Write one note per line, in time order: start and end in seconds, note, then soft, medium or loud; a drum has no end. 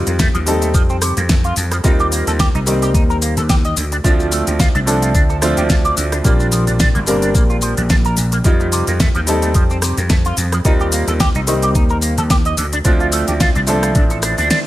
0.00 0.43 G3 medium
0.00 0.44 C4 medium
0.00 0.44 D#4 medium
0.00 0.44 F4 medium
0.06 0.28 F2 medium
0.06 0.11 A#3 medium
0.06 closed hi-hat medium
0.06 maracas soft
0.06 shaker soft
0.19 0.27 A3 loud
0.19 kick loud
0.19 snare loud
0.19 closed hi-hat medium
0.19 maracas medium
0.19 shaker soft
0.34 0.74 D#2 medium
0.34 0.38 F3 loud
0.34 closed hi-hat soft
0.34 shaker soft
0.34 maracas soft
0.46 0.55 F2 medium
0.46 1.81 G3 medium
0.46 1.82 C4 medium
0.46 1.82 D#4 medium
0.46 1.82 A4 medium
0.46 open hi-hat loud
0.46 shaker medium
0.46 maracas medium
0.62 0.68 A3 medium
0.62 closed hi-hat medium
0.62 maracas soft
0.62 shaker soft
0.74 1.12 F2 medium
0.74 0.82 F3 medium
0.74 kick loud
0.74 closed hi-hat medium
0.74 maracas medium
0.74 shaker soft
0.89 0.96 C4 medium
0.89 maracas soft
0.89 shaker soft
1.02 1.13 C3 medium
1.02 cross-stick medium
1.02 open hi-hat loud
1.02 shaker medium
1.02 maracas medium
1.17 1.53 F2 loud
1.17 1.21 A#3 medium
1.17 closed hi-hat medium
1.17 shaker soft
1.17 maracas soft
1.29 1.34 A3 medium
1.29 kick loud
1.29 snare loud
1.29 closed hi-hat medium
1.29 shaker soft
1.29 maracas medium
1.44 1.54 F4 medium
1.44 closed hi-hat soft
1.44 shaker soft
1.44 maracas soft
1.56 1.79 F2 loud
1.56 1.65 F2 medium
1.56 open hi-hat loud
1.56 shaker medium
1.56 maracas loud
1.72 1.76 F3 loud
1.72 cross-stick medium
1.72 closed hi-hat medium
1.72 shaker soft
1.72 maracas soft
1.84 2.22 D#2 loud
1.84 2.64 G3 medium
1.84 2.64 A#3 medium
1.84 2.64 C4 medium
1.84 1.92 D#4 medium
1.84 2.64 D#4 medium
1.84 2.65 F4 loud
1.84 kick loud
1.84 closed hi-hat medium
1.84 shaker soft
1.84 maracas medium
1.99 2.06 G4 medium
1.99 shaker soft
1.99 maracas soft
2.12 2.24 A#3 medium
2.12 open hi-hat loud
2.12 shaker medium
2.12 maracas medium
2.27 2.48 D#2 medium
2.27 2.31 A4 medium
2.27 closed hi-hat medium
2.27 shaker soft
2.27 maracas soft
2.39 2.47 G4 loud
2.39 kick loud
2.39 snare loud
2.39 closed hi-hat medium
2.39 shaker soft
2.39 maracas soft
2.55 2.94 C2 medium
2.55 2.59 D#4 loud
2.55 closed hi-hat soft
2.55 shaker soft
2.55 maracas soft
2.66 2.75 D#3 medium
2.66 3.75 G3 medium
2.66 3.75 A#3 medium
2.66 3.76 C4 medium
2.66 3.76 D#4 medium
2.66 open hi-hat loud
2.66 maracas loud
2.66 shaker medium
2.82 2.89 G4 medium
2.82 closed hi-hat medium
2.82 shaker soft
2.82 maracas soft
2.94 3.32 D#2 medium
2.94 3.02 D#4 medium
2.94 kick loud
2.94 closed hi-hat medium
2.94 shaker soft
2.94 maracas medium
3.10 3.16 A#4 medium
3.10 shaker soft
3.10 maracas soft
3.22 3.34 A#3 medium
3.22 open hi-hat loud
3.22 shaker medium
3.22 maracas loud
3.37 3.73 D#2 loud
3.37 3.41 A4 medium
3.37 closed hi-hat medium
3.37 shaker soft
3.37 maracas soft
3.49 3.54 G4 medium
3.49 kick loud
3.49 snare loud
3.49 closed hi-hat medium
3.49 shaker soft
3.49 maracas medium
3.65 3.74 D#5 medium
3.65 closed hi-hat soft
3.65 shaker soft
3.65 maracas soft
3.77 3.99 D2 loud
3.77 3.85 D3 medium
3.77 open hi-hat loud
3.77 shaker medium
3.77 maracas loud
3.92 3.96 D4 medium
3.92 closed hi-hat soft
3.92 shaker soft
3.92 maracas soft
4.04 4.42 D2 loud
4.04 4.84 F3 medium
4.04 4.84 A3 medium
4.04 4.84 C4 medium
4.04 4.12 D4 medium
4.04 4.85 D4 medium
4.04 4.85 F4 medium
4.04 kick loud
4.04 closed hi-hat medium
4.04 shaker soft
4.04 maracas medium
4.20 4.26 F4 medium
4.20 maracas soft
4.20 shaker soft
4.32 4.44 A3 medium
4.32 open hi-hat loud
4.32 maracas loud
4.32 shaker medium
4.47 4.68 D2 medium
4.47 4.51 G4 medium
4.47 closed hi-hat medium
4.47 shaker soft
4.47 maracas soft
4.60 4.67 F4 loud
4.60 kick loud
4.60 snare loud
4.60 closed hi-hat medium
4.60 shaker soft
4.60 maracas medium
4.75 5.15 C2 medium
4.75 4.79 D4 loud
4.75 closed hi-hat soft
4.75 maracas soft
4.75 shaker soft
4.86 4.95 D3 medium
4.86 5.39 F3 medium
4.86 5.40 A3 medium
4.86 5.40 C4 medium
4.86 5.40 D4 medium
4.86 5.40 A4 medium
4.86 open hi-hat loud
4.86 shaker medium
4.86 maracas loud
5.02 5.09 F4 medium
5.02 closed hi-hat medium
5.02 shaker soft
5.02 maracas soft
5.15 5.52 D2 medium
5.15 5.23 D4 medium
5.15 kick loud
5.15 closed hi-hat medium
5.15 shaker soft
5.15 maracas medium
5.30 5.36 A4 medium
5.30 shaker soft
5.30 maracas soft
5.42 6.22 F3 medium
5.42 6.22 A3 medium
5.42 5.54 A3 medium
5.42 6.22 C4 medium
5.42 6.22 D4 medium
5.42 6.23 F4 loud
5.42 cross-stick medium
5.42 open hi-hat loud
5.42 shaker medium
5.42 maracas medium
5.57 5.93 D2 loud
5.57 5.61 G4 medium
5.57 closed hi-hat medium
5.57 shaker soft
5.57 maracas soft
5.69 5.74 F4 medium
5.69 kick loud
5.69 snare loud
5.69 closed hi-hat medium
5.69 maracas medium
5.69 shaker soft
5.85 5.94 D5 medium
5.85 closed hi-hat soft
5.85 maracas soft
5.85 shaker soft
5.97 6.20 D2 medium
5.97 6.05 D3 medium
5.97 open hi-hat loud
5.97 shaker medium
5.97 maracas loud
6.12 6.16 D4 medium
6.12 cross-stick medium
6.12 closed hi-hat medium
6.12 shaker soft
6.12 maracas soft
6.24 6.62 A#1 loud
6.24 7.04 G3 medium
6.24 7.04 A#3 medium
6.24 6.32 A#3 medium
6.24 7.04 C4 medium
6.24 7.05 D4 medium
6.24 7.05 F4 medium
6.24 kick loud
6.24 closed hi-hat medium
6.24 shaker soft
6.24 maracas medium
6.40 6.46 D4 medium
6.40 maracas soft
6.40 shaker soft
6.52 6.64 F3 medium
6.52 open hi-hat loud
6.52 shaker medium
6.52 maracas loud
6.67 6.89 A#1 medium
6.67 6.71 D4 medium
6.67 closed hi-hat medium
6.67 shaker soft
6.67 maracas soft
6.79 6.88 D4 loud
6.79 kick loud
6.79 snare loud
6.79 closed hi-hat medium
6.79 maracas medium
6.79 shaker soft
6.95 7.35 G1 medium
6.95 6.99 A#3 loud
6.95 closed hi-hat soft
6.95 maracas soft
6.95 shaker soft
7.07 7.15 A#2 medium
7.07 8.42 G3 medium
7.07 8.42 A#3 medium
7.07 8.42 C4 medium
7.07 8.43 D4 medium
7.07 8.43 A#4 medium
7.07 open hi-hat loud
7.07 maracas medium
7.07 shaker medium
7.22 7.29 D4 medium
7.22 closed hi-hat soft
7.22 shaker soft
7.22 maracas soft
7.35 7.72 A#1 medium
7.35 7.42 A#3 medium
7.35 kick loud
7.35 closed hi-hat medium
7.35 shaker soft
7.35 maracas medium
7.50 7.56 F4 medium
7.50 shaker soft
7.50 maracas soft
7.61 7.74 F3 medium
7.61 open hi-hat loud
7.61 maracas medium
7.61 shaker medium
7.77 8.13 A#1 loud
7.77 7.81 D4 medium
7.77 closed hi-hat soft
7.77 maracas soft
7.77 shaker soft
7.89 7.95 D4 medium
7.89 kick loud
7.89 snare loud
7.89 closed hi-hat medium
7.89 maracas medium
7.89 shaker soft
8.05 8.15 A#4 medium
8.05 closed hi-hat soft
8.05 shaker soft
8.05 maracas soft
8.17 8.40 A#1 loud
8.17 8.25 A#2 medium
8.17 open hi-hat loud
8.17 shaker medium
8.17 maracas medium
8.32 8.36 A#3 loud
8.32 closed hi-hat medium
8.32 shaker soft
8.32 maracas soft
8.44 8.82 F2 loud
8.44 8.53 F3 medium
8.44 9.24 G3 medium
8.44 9.25 C4 medium
8.44 9.25 D#4 medium
8.44 9.25 F4 loud
8.44 kick loud
8.44 closed hi-hat medium
8.44 shaker soft
8.44 maracas soft
8.60 8.66 A3 medium
8.60 shaker soft
8.60 maracas soft
8.72 8.84 C3 medium
8.72 open hi-hat loud
8.72 shaker medium
8.72 maracas loud
8.87 9.09 F2 medium
8.87 8.92 A#3 medium
8.87 closed hi-hat medium
8.87 shaker soft
8.87 maracas soft
9.00 9.08 A3 loud
9.00 kick loud
9.00 snare loud
9.00 closed hi-hat medium
9.00 shaker soft
9.00 maracas soft
9.15 9.55 D#2 medium
9.15 9.19 F3 loud
9.15 closed hi-hat soft
9.15 shaker soft
9.15 maracas soft
9.27 9.35 F2 medium
9.27 10.62 G3 medium
9.27 10.62 C4 medium
9.27 10.63 D#4 medium
9.27 10.63 A4 medium
9.27 open hi-hat loud
9.27 shaker medium
9.27 maracas loud
9.42 9.49 A3 medium
9.42 closed hi-hat medium
9.42 shaker soft
9.42 maracas soft
9.54 9.93 F2 medium
9.54 9.63 F3 medium
9.54 kick loud
9.54 closed hi-hat medium
9.54 shaker soft
9.54 maracas soft
9.70 9.77 C4 medium
9.70 shaker soft
9.70 maracas soft
9.82 9.94 C3 medium
9.82 cross-stick medium
9.82 open hi-hat loud
9.82 shaker medium
9.82 maracas loud
9.97 10.33 F2 loud
9.97 10.02 A#3 medium
9.97 closed hi-hat medium
9.97 shaker soft
9.97 maracas soft
10.10 10.15 A3 medium
10.10 kick loud
10.10 snare loud
10.10 closed hi-hat medium
10.10 shaker soft
10.10 maracas soft
10.25 10.35 F4 medium
10.25 closed hi-hat soft
10.25 shaker soft
10.25 maracas soft
10.37 10.60 F2 medium
10.37 10.45 F2 medium
10.37 open hi-hat loud
10.37 shaker medium
10.37 maracas medium
10.52 10.57 F3 loud
10.52 cross-stick medium
10.52 closed hi-hat medium
10.52 shaker soft
10.52 maracas soft
10.65 11.03 D#2 loud
10.65 11.44 G3 medium
10.65 11.45 A#3 medium
10.65 11.45 C4 medium
10.65 10.73 D#4 medium
10.65 11.45 D#4 medium
10.65 11.45 F4 medium
10.65 kick loud
10.65 closed hi-hat medium
10.65 shaker soft
10.65 maracas soft
10.80 10.87 G4 medium
10.80 shaker soft
10.80 maracas soft
10.92 11.04 A#3 medium
10.92 open hi-hat loud
10.92 shaker medium
10.92 maracas medium
11.07 11.29 D#2 medium
11.07 11.12 A4 medium
11.07 closed hi-hat medium
11.07 shaker soft
11.07 maracas soft
11.20 11.28 G4 loud
11.20 kick loud
11.20 snare loud
11.20 closed hi-hat medium
11.20 shaker medium
11.20 maracas soft
11.35 11.75 C2 medium
11.35 11.39 D#4 loud
11.35 closed hi-hat soft
11.35 maracas soft
11.35 shaker soft
11.47 11.55 D#3 medium
11.47 12.56 G3 medium
11.47 12.56 A#3 medium
11.47 12.56 C4 medium
11.47 12.57 D#4 medium
11.47 open hi-hat loud
11.47 shaker medium
11.47 maracas medium
11.62 11.69 G4 medium
11.62 closed hi-hat medium
11.62 maracas soft
11.62 shaker soft
11.75 12.13 D#2 medium
11.75 11.83 D#4 medium
11.75 kick loud
11.75 closed hi-hat medium
11.75 maracas medium
11.75 shaker soft
11.89 11.97 A#4 medium
11.89 maracas soft
11.89 shaker soft
12.02 12.14 A#3 medium
12.02 open hi-hat loud
12.02 maracas medium
12.02 shaker medium
12.18 12.53 D#2 loud
12.18 12.22 A4 medium
12.18 closed hi-hat medium
12.18 maracas soft
12.18 shaker soft
12.30 12.35 G4 medium
12.30 kick loud
12.30 snare loud
12.30 closed hi-hat medium
12.30 shaker soft
12.30 maracas soft
12.45 12.55 D#5 medium
12.45 closed hi-hat soft
12.45 shaker soft
12.45 maracas soft
12.57 12.80 D2 loud
12.57 12.66 D3 medium
12.57 open hi-hat loud
12.57 maracas medium
12.57 shaker medium
12.72 12.77 D4 loud
12.72 closed hi-hat medium
12.72 maracas soft
12.72 shaker soft
12.85 13.23 D2 loud
12.85 13.65 F3 medium
12.85 13.65 A3 medium
12.85 13.65 C4 medium
12.85 12.93 D4 medium
12.85 13.65 D4 medium
12.85 13.66 F4 loud
12.85 kick loud
12.85 closed hi-hat medium
12.85 maracas medium
12.85 shaker soft
13.00 13.07 F4 medium
13.00 maracas soft
13.00 shaker soft
13.12 13.24 A3 medium
13.12 open hi-hat loud
13.12 maracas loud
13.12 shaker medium
13.27 13.49 D2 medium
13.27 13.32 G4 medium
13.27 closed hi-hat medium
13.27 maracas soft
13.27 shaker soft
13.40 13.48 F4 loud
13.40 kick loud
13.40 snare loud
13.40 closed hi-hat medium
13.40 maracas soft
13.40 shaker soft
13.55 13.91 C2 medium
13.55 13.59 D4 loud
13.55 closed hi-hat soft
13.55 maracas soft
13.55 shaker soft
13.67 13.76 D3 medium
13.67 14.67 F3 medium
13.67 14.67 A3 medium
13.67 14.67 C4 medium
13.67 14.67 D4 medium
13.67 14.67 A4 medium
13.67 open hi-hat loud
13.67 maracas medium
13.67 shaker medium
13.83 13.90 F4 medium
13.83 cross-stick medium
13.83 closed hi-hat medium
13.83 maracas soft
13.83 shaker soft
13.95 14.33 A1 loud
13.95 14.03 D4 medium
13.95 kick loud
13.95 closed hi-hat medium
13.95 maracas medium
13.95 shaker soft
14.10 14.17 A4 medium
14.10 closed hi-hat soft
14.10 shaker soft
14.10 maracas soft
14.22 14.35 D4 medium
14.22 cross-stick medium
14.22 open hi-hat loud
14.22 maracas medium
14.22 shaker medium
14.37 14.48 D2 medium
14.37 14.47 D4 loud
14.37 open hi-hat medium
14.37 maracas soft
14.37 shaker soft
14.50 14.58 D4 loud
14.50 snare loud
14.50 closed hi-hat medium
14.50 maracas soft
14.50 shaker soft